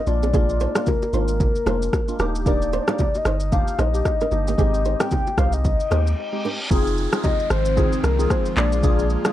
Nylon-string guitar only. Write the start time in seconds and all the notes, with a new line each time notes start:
0.23 C4 G#4
0.34 D4 G#4
0.61 D#4 C5
0.76 F4 D5
1.14 D#4 C5
1.67 D#4 C5
2.20 D4 A#4
2.47 D4 A#4
2.73 D#4 C5
2.89 F4 D5
3.27 D#4 C5
3.79 D#4 C5
4.21 D4 A#4
4.48 A#3 G4
4.59 C4 G#4
4.86 D#4 C5
5.01 G4 D#5
5.39 D#4 C5
5.92 D#4 C5
6.45 D4 A#4